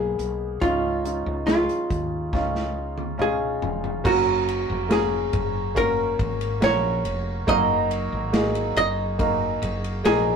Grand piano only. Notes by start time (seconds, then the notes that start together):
Already playing: A#3 B3 G#4
0.61 G#2 C#4 D#4 F4
1.04 C#4 D#4 F4
1.46 C#4 D#4 G#4
2.33 C#4 D#4 F4
3.18 C#4 D#4 F4
4.04 C#3 A#3 C#4 F#4 A#4
4.89 A#3 C#4 F#4 A#4
5.75 A#3 C#4 F#4 A#4
6.61 A#3 C#4 F#4 A#4
7.47 F#3 A#3 D#4 F#4 A#4
8.32 A#3 D#4 F#4 G#4
9.19 A#3 D#4 F#4 A#4
10.04 A#3 D#4 F#4 A#4